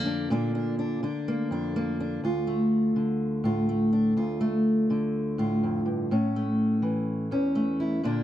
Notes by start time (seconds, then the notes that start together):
Already playing: F2 D3 A#3
0.06 D4
0.30 A#2 D3 A#3 D4
0.55 D4
0.79 D4
1.03 D3 D4
1.28 A#3
1.51 F2 D4
1.76 A#3
2.00 D4
2.24 D2 F4
2.47 A3
2.96 D3
3.44 A2 F4
3.69 A3
3.93 D4
4.17 D2 F4
4.41 A3
4.90 D3
5.38 A2 F4
5.63 F2
5.86 G2
6.11 A2 C#4
6.36 A3
6.82 E3
7.31 E2 C#4
7.55 A3
7.80 E4
8.03 A#2 D3 A#3 D4